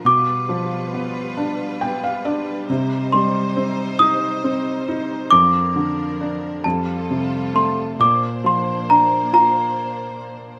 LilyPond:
<<
  \new Staff \with { instrumentName = "Celesta" } { \time 6/8 \key bes \major \tempo 4. = 45 d'''2 r4 | r8 c'''4 ees'''4 r8 | d'''4. a''4 c'''8 | d'''8 c'''8 bes''8 bes''4. | }
  \new Staff \with { instrumentName = "String section" } { \time 6/8 \key bes \major << { <b, f' b'>2. | <ees' c''>2. | <d' bes'>4. <f' a'>4. | <d' c''>2. | } \\ { g2.~ | g2. | f4. g4. | bes2. | } >> }
  \new Staff \with { instrumentName = "Felt piano" } { \time 6/8 \key bes \major r2 g''16 f''16 d''8 | r2. | r2. | r2. | }
  \new Staff \with { instrumentName = "Felt piano" } { \time 6/8 \key bes \major b,8 f8 b8 d'8 b8 d'8 | c8 g8 c'8 ees'8 c'8 ees'8 | f,8 d8 d'8 f,8 c8 a8 | bes,8 f8 d'8 f'4. | }
>>